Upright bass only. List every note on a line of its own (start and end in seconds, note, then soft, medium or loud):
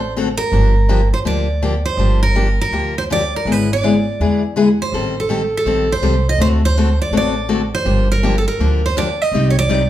0.00 0.38 A1 medium
0.52 1.11 G1 medium
1.25 1.84 D2 medium
1.97 2.57 G1 medium
2.71 3.30 D2 medium
3.45 4.05 G#1 medium
4.20 4.79 E2 medium
4.92 5.51 A1 medium
5.65 5.97 A#1 medium
6.02 6.34 C2 medium
6.38 6.98 D2 medium
7.11 7.71 A1 medium
7.85 8.45 G1 medium
8.59 9.18 D2 medium
9.32 9.90 C2 medium